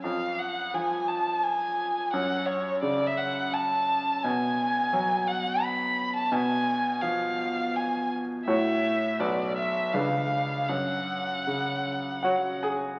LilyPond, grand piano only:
<<
  \new Staff \with { instrumentName = "Grand piano" } { \time 3/4 \key fis \minor \tempo 4 = 85 r2. | r2. | r2. | r2. |
r2. | r2 <fis' cis'' fis''>8 <gis' gis''>8 | }
  \new Staff \with { instrumentName = "Grand piano" } { \clef bass \time 3/4 \key fis \minor eis,4 eis2 | fis,4 cis2 | b,4 fis2 | ces4 f2 |
<a, fis' cis''>4 <b,, fis' b'>4 <cis, d' b'>4 | fis,4 cis2 | }
>>